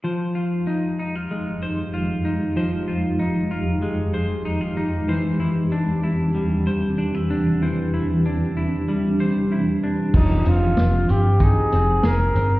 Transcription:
<<
  \new Staff \with { instrumentName = "Flugelhorn" } { \time 4/4 \key f \dorian \tempo 4 = 95 r1 | r1 | r1 | r1 |
ees'8 f'4 g'8 aes'4 bes'4 | }
  \new Staff \with { instrumentName = "Clean electric guitar" } { \time 4/4 \key f \dorian <f c''>8 f'8 ees'8 ees'16 f'16 aes8 c''8 f'8 ees'8 | <f c''>8 f'8 ees'8 f'8 aes8 c''8 ees'16 f'16 ees'8 | <e c''>8 e'8 d'8 e'8 g8 c''8 d'16 e'16 d'8 | <e c''>8 e'8 d'8 e'8 g8 c''8 e'8 d'8 |
f8 c'4 c'8 ees'8 c'8 aes'8 c'8 | }
  \new Staff \with { instrumentName = "Ambient pad" } { \time 4/4 \key f \dorian << { g'1~ | g'1~ | g'1~ | g'1 |
ees'''1 | } \\ { <f, f aes ees'>1~ | <f, f aes ees'>1 | <e, e c' d'>1~ | <e, e c' d'>1 |
<f c''>1 | } >> }
  \new Staff \with { instrumentName = "Fingered electric bass" } { \clef bass \time 4/4 \key f \dorian r1 | r1 | r1 | r1 |
f,,8 f,,8 f,,8 g,,8. r16 f,,8 f,,8 g,,8 | }
  \new DrumStaff \with { instrumentName = "Drums" } \drummode { \time 4/4 r4 r4 r4 r4 | r4 r4 r4 r4 | r4 r4 r4 r4 | r4 r4 r4 r4 |
<cymc bd>8 hh8 <hh sn>8 hh8 <hh bd>8 hh8 <hh sn>8 hh8 | }
>>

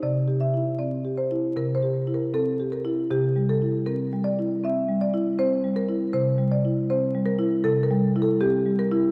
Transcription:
\new Staff \with { instrumentName = "Marimba" } { \time 4/4 \key c \dorian \tempo 4 = 79 << { d''8 e''8 d''8 c''8 bes'16 c''8 bes'16 a'8 bes'8 | g'8 a'8 bes'8 d''8 e''8 d''8 c''8 bes'8 | c''8 d''8 c''8 bes'8 a'16 bes'8 a'16 g'8 bes'8 | } \\ { \tuplet 3/2 { c8 g'8 e'8 c'8 g'8 e'8 c8 g'8 e'8 c'8 g'8 e'8 } | \tuplet 3/2 { c8 g8 e'8 c'8 g8 e'8 c'8 g8 e'8 c'8 g8 e'8 } | \tuplet 3/2 { c8 g8 e'8 c'8 g8 e'8 c8 g8 e'8 c'8 g8 e'8 } | } >> }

